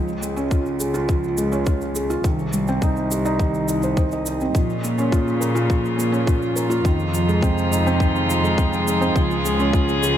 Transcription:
0.00 2.21 C#2 medium
0.08 shaker soft
0.22 0.36 G#3 medium
0.22 shaker medium
0.36 0.45 C#4 medium
0.36 shaker soft
0.51 0.65 F4 medium
0.51 kick medium
0.51 shaker soft
0.66 shaker soft
0.80 0.94 G#4 medium
0.80 shaker medium
0.94 1.08 F4 medium
0.94 shaker soft
1.09 1.23 F3 medium
1.09 kick medium
1.09 shaker soft
1.24 shaker soft
1.38 1.51 G#3 medium
1.38 shaker medium
1.52 1.60 C#4 medium
1.52 shaker soft
1.66 1.80 F4 medium
1.66 kick loud
1.66 shaker soft
1.81 shaker soft
1.95 2.09 G#4 medium
1.95 shaker medium
2.10 2.24 F4 medium
2.10 shaker soft
2.24 4.52 C2 medium
2.24 2.38 D#3 medium
2.24 kick loud
2.24 shaker soft
2.39 shaker soft
2.53 2.67 G3 medium
2.53 shaker medium
2.67 2.76 C4 medium
2.67 shaker soft
2.82 2.96 D#4 medium
2.82 kick medium
2.82 shaker soft
2.96 shaker soft
3.11 3.25 G4 medium
3.11 shaker medium
3.25 3.39 D#4 medium
3.25 shaker soft
3.39 3.53 D#3 medium
3.39 kick medium
3.39 shaker soft
3.54 shaker soft
3.68 3.77 D#4 medium
3.68 shaker medium
3.83 3.96 C5 medium
3.83 shaker soft
3.97 4.06 C5 medium
3.97 kick medium
3.97 shaker soft
4.11 4.26 D#5 medium
4.11 shaker soft
4.26 4.40 D#4 medium
4.26 shaker medium
4.41 4.55 C4 medium
4.41 shaker soft
4.55 6.83 A#2 medium
4.55 6.83 C#3 medium
4.55 10.18 F3 medium
4.55 4.69 F3 medium
4.55 6.83 C#4 medium
4.55 10.18 F4 medium
4.55 kick medium
4.55 shaker soft
4.70 shaker soft
4.84 4.98 A#3 medium
4.84 shaker medium
4.98 5.06 C#4 medium
4.98 shaker soft
5.12 5.26 F4 medium
5.12 kick medium
5.12 shaker soft
5.28 shaker soft
5.41 5.55 A#4 medium
5.41 shaker medium
5.55 5.69 F4 medium
5.55 shaker soft
5.69 5.83 F3 medium
5.69 kick medium
5.69 shaker soft
5.85 shaker soft
5.98 6.12 A#3 medium
5.98 shaker medium
6.12 6.21 C#4 medium
6.12 shaker soft
6.26 6.41 F4 medium
6.26 kick loud
6.26 shaker soft
6.42 shaker soft
6.56 6.70 A#4 medium
6.56 shaker medium
6.70 6.84 F4 medium
6.70 shaker soft
6.84 9.13 F2 medium
6.84 9.14 C3 medium
6.84 6.99 D#3 medium
6.84 10.18 G#3 medium
6.84 9.14 D#4 medium
6.84 kick medium
6.84 shaker soft
6.99 shaker soft
7.14 7.28 F3 medium
7.14 shaker medium
7.28 7.37 G#3 medium
7.28 shaker soft
7.43 7.57 C4 medium
7.43 kick medium
7.43 shaker soft
7.58 shaker soft
7.72 7.86 D#4 medium
7.72 shaker medium
7.87 8.00 C4 loud
7.87 shaker soft
8.00 8.14 D#3 medium
8.00 kick medium
8.00 shaker soft
8.16 shaker soft
8.29 8.43 F3 medium
8.29 shaker medium
8.44 8.52 G#3 medium
8.44 shaker soft
8.58 8.72 C4 medium
8.58 kick medium
8.58 shaker soft
8.73 shaker soft
8.88 9.01 D#4 medium
8.88 shaker medium
9.01 9.15 C4 loud
9.01 shaker soft
9.15 10.18 C#2 medium
9.15 10.18 C#3 medium
9.15 9.30 F3 medium
9.15 10.18 G#4 medium
9.15 kick medium
9.15 shaker soft
9.31 shaker soft
9.45 9.59 G#3 medium
9.45 shaker medium
9.59 9.68 C#4 medium
9.59 shaker soft
9.73 9.88 F4 medium
9.73 kick medium
9.73 shaker soft
9.89 shaker soft
10.03 10.16 G#4 medium
10.03 shaker medium

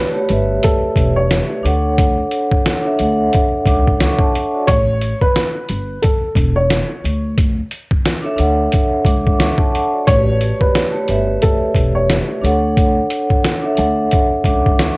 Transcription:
0.00 0.14 A3 medium
0.00 0.15 G4 medium
0.00 0.16 B4 medium
0.00 0.60 B4 medium
0.00 0.17 C#5 loud
0.14 0.27 A3 medium
0.14 0.28 G4 medium
0.14 0.29 B4 medium
0.14 0.30 C#5 loud
0.28 0.57 G1 medium
0.28 1.54 A3 medium
0.28 1.55 G4 medium
0.28 1.55 B4 medium
0.28 1.56 E5 medium
0.28 closed hi-hat medium
0.63 1.13 A4 medium
0.63 kick medium
0.63 closed hi-hat loud
0.96 1.39 E1 medium
0.96 kick medium
0.96 closed hi-hat medium
1.16 1.94 C#5 medium
1.31 snare loud
1.31 closed hi-hat loud
1.63 2.19 D2 medium
1.63 2.73 D4 medium
1.63 2.73 A4 medium
1.63 2.74 C#5 medium
1.63 2.74 F#5 loud
1.63 closed hi-hat medium
1.98 kick loud
1.98 closed hi-hat loud
2.31 closed hi-hat medium
2.52 kick medium
2.66 snare loud
2.66 closed hi-hat medium
2.83 2.96 D4 medium
2.83 2.97 A4 medium
2.83 2.98 C#5 medium
2.83 2.99 E5 medium
2.97 3.27 D2 medium
2.97 4.23 D4 medium
2.97 3.66 A4 medium
2.97 3.67 C#5 medium
2.97 3.66 F#5 medium
2.97 closed hi-hat medium
3.33 kick medium
3.33 closed hi-hat loud
3.66 4.09 C#2 medium
3.66 3.99 F#5 medium
3.66 3.99 D6 medium
3.66 kick medium
3.66 closed hi-hat medium
3.87 kick medium
4.00 4.19 C#6 medium
4.00 snare loud
4.00 closed hi-hat medium
4.19 4.34 C#5 medium
4.19 4.34 A5 medium
4.19 kick loud
4.34 4.52 A4 medium
4.34 4.52 F#5 medium
4.34 closed hi-hat medium
4.54 4.68 F#4 medium
4.54 4.68 D5 medium
4.67 5.11 A1 loud
4.67 5.17 C#5 loud
4.67 kick loud
4.67 closed hi-hat loud
5.01 closed hi-hat medium
5.21 5.99 B4 medium
5.21 kick medium
5.36 snare loud
5.36 closed hi-hat loud
5.68 5.97 G1 medium
5.68 closed hi-hat medium
6.02 6.52 A4 medium
6.02 kick medium
6.02 closed hi-hat loud
6.35 6.79 E1 medium
6.35 kick medium
6.35 closed hi-hat medium
6.56 7.34 C#5 medium
6.70 snare loud
6.70 closed hi-hat medium
7.04 7.59 D2 medium
7.04 closed hi-hat medium
7.38 kick loud
7.38 closed hi-hat loud
7.71 closed hi-hat medium
7.91 kick medium
8.06 snare loud
8.06 closed hi-hat loud
8.22 8.35 D4 medium
8.22 8.36 A4 medium
8.22 8.38 C#5 medium
8.22 8.38 E5 loud
8.36 8.66 D2 medium
8.36 9.62 D4 medium
8.36 9.06 A4 medium
8.36 9.06 C#5 medium
8.36 9.05 F#5 loud
8.36 closed hi-hat medium
8.72 kick medium
8.72 closed hi-hat loud
9.05 9.49 C#2 loud
9.05 9.38 F#5 medium
9.05 9.38 D6 medium
9.05 kick medium
9.05 closed hi-hat medium
9.27 kick medium
9.39 9.57 C#6 medium
9.39 snare loud
9.39 closed hi-hat medium
9.58 9.73 C#5 medium
9.58 9.73 A5 medium
9.58 kick loud
9.73 9.91 A4 medium
9.73 9.91 F#5 medium
9.73 closed hi-hat medium
9.93 10.25 F#4 medium
9.93 10.25 D5 medium
10.05 10.50 A1 loud
10.05 10.85 A3 medium
10.05 10.85 G4 medium
10.05 10.86 B4 medium
10.05 10.57 C#5 loud
10.05 10.87 C#5 medium
10.05 kick loud
10.05 closed hi-hat loud
10.41 closed hi-hat medium
10.61 11.39 B4 medium
10.61 kick medium
10.75 snare loud
10.75 closed hi-hat loud
10.92 11.05 A3 medium
10.92 11.07 G4 medium
10.92 11.08 B4 medium
10.92 11.08 C#5 medium
11.07 11.36 G1 medium
11.07 12.32 A3 medium
11.07 12.33 G4 medium
11.07 12.34 B4 medium
11.07 12.34 E5 loud
11.07 closed hi-hat medium
11.42 11.92 A4 medium
11.42 kick medium
11.42 closed hi-hat loud
11.75 12.18 E1 medium
11.75 kick medium
11.75 closed hi-hat medium
11.95 12.73 C#5 medium
12.10 snare loud
12.10 closed hi-hat loud
12.41 12.98 D2 loud
12.41 13.51 D4 medium
12.41 13.52 A4 medium
12.41 13.52 C#5 medium
12.41 13.53 F#5 loud
12.41 closed hi-hat medium
12.77 kick loud
12.77 closed hi-hat loud
13.10 closed hi-hat medium
13.30 kick medium
13.44 snare loud
13.44 closed hi-hat loud
13.62 13.74 D4 medium
13.62 13.76 A4 medium
13.62 13.77 C#5 medium
13.62 13.78 E5 loud
13.75 14.06 D2 loud
13.75 14.97 D4 medium
13.75 14.45 A4 medium
13.75 14.45 C#5 medium
13.75 14.45 F#5 loud
13.75 closed hi-hat medium
14.11 kick medium
14.11 closed hi-hat loud
14.44 14.88 C#2 medium
14.44 14.78 F#5 medium
14.44 14.77 D6 medium
14.44 kick medium
14.44 closed hi-hat medium
14.66 kick medium
14.79 snare loud
14.79 closed hi-hat medium

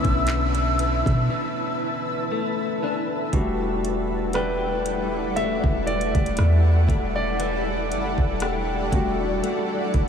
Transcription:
0.00 3.33 B2 medium
0.00 3.28 D3 medium
0.00 1.29 E3 medium
0.00 2.30 A3 medium
0.00 3.29 A3 medium
0.00 3.30 C#4 medium
0.00 2.83 D4 medium
0.00 3.29 E4 medium
0.00 3.31 E4 medium
0.00 3.29 B4 medium
0.00 3.29 E5 medium
0.00 3.29 A5 medium
0.00 2.28 E6 loud
0.05 1.02 B1 loud
0.05 kick medium
0.05 closed hi-hat soft
0.27 clap loud
0.27 closed hi-hat medium
0.55 closed hi-hat soft
0.79 closed hi-hat medium
1.06 1.29 B2 loud
1.06 kick medium
1.06 closed hi-hat soft
1.30 2.82 E3 medium
2.32 2.83 A3 medium
2.83 3.33 E3 medium
2.83 4.34 A3 medium
2.83 4.35 D4 medium
3.33 5.60 E1 loud
3.33 7.38 E3 medium
3.33 10.08 G3 medium
3.33 7.36 G3 medium
3.33 7.36 A3 medium
3.33 7.36 D4 medium
3.33 10.08 E4 medium
3.33 7.37 F#4 medium
3.33 10.08 A4 medium
3.33 10.08 D5 medium
3.33 10.08 F#5 medium
3.33 kick loud
3.33 closed hi-hat medium
3.85 closed hi-hat medium
4.33 5.36 A3 medium
4.33 8.41 D4 medium
4.33 8.42 G4 medium
4.33 5.39 B4 medium
4.33 cross-stick loud
4.33 closed hi-hat medium
4.86 closed hi-hat medium
5.36 6.89 A3 medium
5.36 5.84 E5 loud
5.36 closed hi-hat medium
5.64 6.13 E1 medium
5.64 kick medium
5.87 7.12 D5 medium
5.87 closed hi-hat soft
6.01 closed hi-hat soft
6.15 6.37 E1 loud
6.15 kick medium
6.15 closed hi-hat medium
6.26 closed hi-hat medium
6.37 6.87 E2 loud
6.37 cross-stick loud
6.37 closed hi-hat medium
6.89 7.92 E1 loud
6.89 8.41 A3 medium
6.89 kick medium
6.89 closed hi-hat medium
7.16 10.08 D5 loud
7.40 10.08 E3 medium
7.40 closed hi-hat medium
7.91 8.17 F#1 medium
7.91 closed hi-hat medium
8.18 8.89 E1 medium
8.18 kick medium
8.40 9.43 A3 medium
8.40 10.08 D4 medium
8.40 10.08 G4 medium
8.40 cross-stick loud
8.40 closed hi-hat medium
8.92 9.41 E1 loud
8.92 9.62 G3 medium
8.92 9.62 A3 soft
8.92 9.62 D4 soft
8.92 9.62 F#4 medium
8.92 kick medium
8.92 closed hi-hat medium
9.43 10.08 A3 medium
9.43 closed hi-hat medium
9.94 10.08 E1 loud
9.94 kick medium
9.94 closed hi-hat soft

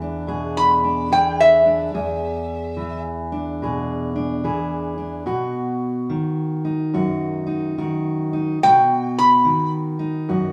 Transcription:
0.00 1.93 E2 medium
0.00 1.10 E3 medium
0.00 0.82 D4 medium
0.00 0.28 G#4 medium
0.27 1.11 B2 medium
0.27 1.10 G#4 medium
0.57 1.10 B5 medium
0.84 1.64 D4 medium
1.11 1.91 E3 medium
1.11 1.91 G#4 medium
1.11 1.39 G5 medium
1.40 3.02 E5 medium
1.66 1.91 D4 medium
1.94 5.27 E2 medium
1.94 3.61 G#4 medium
2.77 4.43 E3 medium
3.32 4.14 D4 medium
3.62 4.45 B2 medium
3.62 4.43 G#4 medium
4.16 4.97 D4 medium
4.44 5.24 E3 medium
4.44 5.24 G#4 medium
4.98 5.23 D4 medium
5.26 6.10 B2 medium
5.26 6.94 F#4 medium
6.09 7.77 D#3 medium
6.65 7.45 D#4 medium
6.94 8.57 F#2 medium
6.94 7.77 F#4 medium
7.47 8.31 D#4 medium
7.78 8.58 D#3 medium
7.78 8.58 F#4 medium
8.33 8.58 D#4 medium
8.63 9.46 B2 medium
8.63 10.28 F#4 medium
8.63 9.16 G5 medium
9.19 9.72 B5 medium
9.45 10.52 D#3 medium
9.99 10.52 D#4 medium
10.29 10.52 F#2 medium
10.29 10.52 F#4 medium

